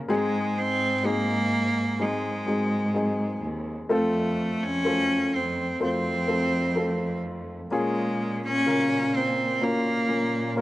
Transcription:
Already playing: A#3 C#4 F4 G#4 A#4
0.08 G#2 G#3 C4 D#4 G#4
0.58 C4
1.03 G#3 A#3 C4 D#4 G#4
1.99 G#3 C4 D#4 G#4
2.46 G#2 G#3 C4 D#4 G#4
2.94 G#3 C4 D#4 G#4
3.42 D#2
3.89 F2 A3 C4 F4 A4
4.62 F2 C#4
4.85 A3 F4 A4 C5
5.34 F2 C4
5.80 F2 A3 C4 F4 C5
6.28 A3 C4 F4 A4
6.76 A3 C4 F4 A4
7.71 A#2 G#3 A#3 C#4 F4 G#4
8.45 C#4
8.66 C#3 A#3 F4 A#4
9.16 C4
9.61 A#3 C#4 F4 A#4
10.08 A#2 A#3 C#4 F4 A#4
10.56 A#3 F4 A#4 C#5

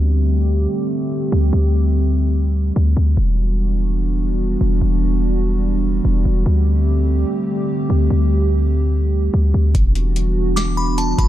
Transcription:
Already playing: D2 D3 G3 A3 C4 G4
1.32 D2
1.53 D2
2.76 D2
2.97 D2
3.17 E1 E3 B3 D4 F#4
4.61 E1
4.82 E1
6.05 E1
6.25 E1
6.46 D2 D3 A3 C4 G4
7.90 D2
8.10 D2
9.34 D2
9.54 D2
9.75 E1 E3 G3 B3 D4 F#4, kick, closed hi-hat
9.95 closed hi-hat
10.16 closed hi-hat
10.56 D6, snare, closed hi-hat
10.77 B5
10.98 A5, closed hi-hat
11.18 E1 B5, kick, closed hi-hat

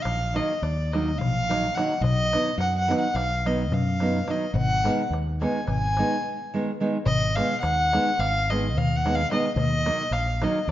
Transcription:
0.02 A#1 F5, darbuka tek
0.21 darbuka tek
0.34 D#3 F#3 A#3 D#4 D#5, darbuka tek
0.51 darbuka tek
0.62 D#2 D5, darbuka tek
0.92 D#3 F#3 A#3 D#4 D#5, darbuka tek
1.18 A#1 F5, darbuka dum
1.49 D#3 F#3 A#3 D#4, darbuka tek
1.75 D#3 F#3 A#3 F#5, darbuka tek
1.79 D#4
1.91 darbuka tek
2.01 B1 D#5, darbuka dum
2.18 darbuka tek
2.33 D#3 F#3 B3 D#4, darbuka tek
2.58 F#2 F#5, darbuka tek
2.75 F#5, darbuka tek
2.88 D#3 F#3 B3 D#4, darbuka tek
2.99 F#5
3.15 B1 F5, darbuka tek
3.45 D#3 F#3 B3 D#4 D#5, darbuka tek
3.72 F#2 F5, darbuka dum
4.00 D#3 F#3 B3 D#4, darbuka tek
4.28 D#3 F#3 B3 D#4 D#5, darbuka tek
4.41 darbuka tek
4.54 G#1 F#5, darbuka dum
4.84 D#3 G#3 B3 D#4, darbuka tek
5.00 darbuka tek
5.10 D#2, darbuka tek
5.27 darbuka tek
5.41 D#3 G#3 B3 D#4 G#5, darbuka tek
5.55 darbuka tek
5.67 G#1 G#5, darbuka tek, darbuka dum
5.97 D#3 G#3 B3 D#4, darbuka tek
6.54 D#3 G#3 B3 D#4
6.80 D#3 G#3 B3 D#4
7.06 G#1 D#5, darbuka dum
7.22 darbuka tek
7.35 D#3 G#3 B3 D#4 F5, darbuka tek
7.61 D#2 F#5, darbuka tek
7.78 darbuka tek
7.92 D#3 G#3 B3 D#4, darbuka tek
8.06 darbuka tek
8.19 G#1 F5, darbuka tek
8.50 D#3 G#3 B3 D#4 D#5, darbuka tek
8.76 D#2 F5, darbuka dum
8.96 F#5
9.05 D#3 G#3 B3 D#4, darbuka tek
9.15 F5
9.31 D#3 G#3 B3 D#4 D#5, darbuka tek
9.45 darbuka tek
9.56 D#2 D#5, darbuka dum
9.72 darbuka tek
9.85 D#3 F#3 A#3 D#4, darbuka tek
10.11 A#1 F5, darbuka tek
10.26 darbuka tek
10.41 D#3 F#3 A#3 D#4 D#5, darbuka tek
10.55 darbuka tek
10.68 D#2 D5

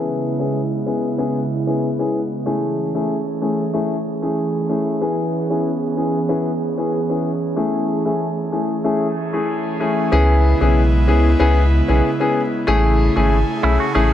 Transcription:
Already playing: C#3 G#3 B3 C#4 E4 G#4
0.39 B3 C#4 E4 G#4
0.86 B3 C#4 E4 G#4
1.18 B3 C#4 E4 G#4
1.67 B3 C#4 E4 G#4
1.99 B3 C#4 E4 G#4
2.46 E3 A3 C#4 E4 G#4
2.95 A3 C#4 E4 G#4
3.42 A3 C#4 E4 G#4
3.74 A3 C#4 E4 G#4
4.22 A3 C#4 E4 G#4
4.69 A3 C#4 E4 G#4
5.01 B3 C#4 E4 G#4
5.50 B3 C#4 E4 G#4
5.97 B3 C#4 E4 G#4
6.29 B3 C#4 E4 G#4
6.78 B3 C#4 E4 G#4
7.10 B3 C#4 E4 G#4
7.56 A3 C#4 E4 G#4
8.05 A3 C#4 E4 G#4
8.52 A3 C#4 E4 G#4
8.84 A3 C#4 E4 G#4
9.33 A3 C#4 E4 G#4
9.80 A3 C#4 E4 G#4
10.12 C#2 C#3 G#3 B3 C#4 E4 G#4
10.61 B1 B3 C#4 E4 G#4
11.08 C#2 B3 C#4 E4 G#4
11.39 C#2 B3 C#4 E4 G#4
11.88 B1 B3 C#4 E4 G#4
12.20 B3 C#4 E4 G#4
12.67 A1 A3 C#4 E4 G#4
13.16 G#1 A3 C#4 E4 G#4
13.63 B1 A3 C#4 E4 G#4
13.80 F#4
13.95 A1 A3 C#4 E4 G#4

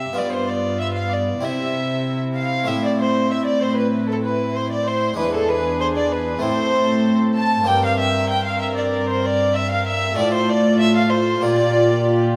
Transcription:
Already playing: C3 C4 E4 G4 E5
0.13 G2 B3 F4 D5
0.18 D5
0.30 C5
0.35 C5
0.47 D5
0.79 E5
0.94 F5
1.09 D5
1.13 D5
1.41 C3 C4 E4 E5
2.36 F5
2.64 A2 A3 C4 E4
2.68 A2 E5
2.84 D5
3.00 C5
3.31 E5
3.46 D5
3.61 C5
3.77 B4
4.08 A4
4.23 B4
4.54 C5
4.71 D5
4.86 C5
5.14 G#3 D4 E4 B4
5.18 E2 D4 G#4 B4
5.34 A4
5.49 B4
5.81 C5
5.97 D5
6.12 B4
6.39 A3 C4 E4 A4 C5
6.43 A2 C5
7.35 A5
7.64 G2 A#3 C4 G4 G5
7.68 G2 A#4 G5
7.83 F5
7.98 E5
8.30 G5
8.44 F5
8.60 E5
8.76 D5
9.07 C5
9.23 D5
9.54 E5
9.69 F5
9.87 E5
10.15 A2 A3 C4 F4 A4 D5
10.19 A2 D5
10.34 C5
10.50 D5
10.80 E5
10.96 F5
11.10 C5
11.41 A#2 A#3 F4 G4 D5

